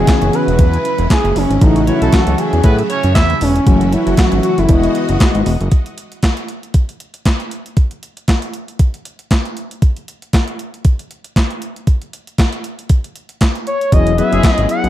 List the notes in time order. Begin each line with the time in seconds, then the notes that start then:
Already playing: C#3 E3 F#3 G#3 B3 C#4 E4 F#4 G#4
0.07 kick, snare, clap, closed hi-hat
0.22 F#1, closed hi-hat
0.33 B4, closed hi-hat
0.48 E1, closed hi-hat
0.59 E2 B4, kick, closed hi-hat
0.74 closed hi-hat
0.85 closed hi-hat
0.98 E1, closed hi-hat
1.10 G#4, kick, snare, clap, closed hi-hat
1.24 F#1, closed hi-hat
1.36 F#1 C#4, open hi-hat
1.50 G#1, closed hi-hat
1.61 A1 E3 F#3 A3 C#4 D#4 F#4, kick, closed hi-hat
1.76 closed hi-hat
1.87 E3 F#3 A3 C#4 E4 F#4 C#5, closed hi-hat
2.01 B1 A3 A4, closed hi-hat
2.12 F#4, kick, snare, clap, closed hi-hat
2.27 C#2, closed hi-hat
2.38 G#4, closed hi-hat
2.53 E2, closed hi-hat
2.64 A2 B3 B4, kick, closed hi-hat
2.79 closed hi-hat
2.89 C#4 C#5, closed hi-hat
3.03 F#2, closed hi-hat
3.15 E2 E4 E5, kick, snare, clap, closed hi-hat
3.30 closed hi-hat
3.41 E1 C#4, open hi-hat
3.56 closed hi-hat
3.66 F#1 E3 F#3 A3 C#4 E4 F#4, kick, closed hi-hat
3.81 closed hi-hat
3.92 E3 F#3 A3 C#4 E4 F#4, closed hi-hat
4.07 F#1, closed hi-hat
4.17 F#4, kick, snare, clap, closed hi-hat
4.32 G#1, closed hi-hat
4.43 F#4, closed hi-hat
4.58 F#1 E4, closed hi-hat
4.69 E1 E3 G#3 B3 F#4 D#5, kick, closed hi-hat
4.83 closed hi-hat
4.95 closed hi-hat
5.09 F#1, closed hi-hat
5.20 kick, snare, clap, closed hi-hat
5.35 G#1, closed hi-hat
5.46 E1, open hi-hat
5.61 F#1, closed hi-hat
5.71 kick, closed hi-hat
5.86 closed hi-hat
5.98 closed hi-hat
6.12 closed hi-hat
6.23 kick, snare, clap, closed hi-hat
6.37 closed hi-hat
6.48 closed hi-hat
6.63 closed hi-hat
6.74 kick, closed hi-hat
6.89 closed hi-hat
7.00 closed hi-hat
7.14 closed hi-hat
7.25 kick, snare, clap, closed hi-hat
7.40 closed hi-hat
7.51 closed hi-hat
7.66 closed hi-hat
7.77 kick, closed hi-hat
7.91 closed hi-hat
8.03 closed hi-hat
8.17 closed hi-hat
8.28 kick, snare, clap, closed hi-hat
8.42 closed hi-hat
8.54 closed hi-hat
8.68 closed hi-hat
8.79 kick, closed hi-hat
8.94 closed hi-hat
9.05 closed hi-hat
9.19 closed hi-hat
9.31 kick, snare, clap, closed hi-hat
9.45 closed hi-hat
9.57 closed hi-hat
9.71 closed hi-hat
9.82 kick, closed hi-hat
9.96 closed hi-hat
10.08 closed hi-hat
10.22 closed hi-hat
10.33 kick, snare, clap, closed hi-hat
10.48 closed hi-hat
10.59 closed hi-hat
10.74 closed hi-hat
10.85 kick, closed hi-hat
10.99 closed hi-hat
11.11 closed hi-hat
11.24 closed hi-hat
11.36 kick, snare, clap, closed hi-hat
11.51 closed hi-hat
11.62 closed hi-hat
11.76 closed hi-hat
11.87 kick, closed hi-hat
12.02 closed hi-hat
12.13 closed hi-hat
12.27 closed hi-hat
12.38 kick, snare, clap, closed hi-hat
12.52 closed hi-hat
12.64 closed hi-hat
12.79 closed hi-hat
12.89 kick, closed hi-hat
13.04 closed hi-hat
13.16 closed hi-hat
13.29 closed hi-hat
13.41 kick, snare, clap, closed hi-hat
13.55 closed hi-hat
13.67 C#5, closed hi-hat
13.81 closed hi-hat
13.92 E1 F#3 B3 C#4 E4 G#4 D#5, kick, closed hi-hat
14.07 closed hi-hat
14.18 F#3 B3 C#4 E4 G#4 B4 E5, closed hi-hat
14.32 F#1 G#3 G#4, closed hi-hat
14.43 kick, snare, clap, closed hi-hat
14.53 D#5
14.58 G#1, closed hi-hat
14.69 F#5, closed hi-hat
14.84 B1, closed hi-hat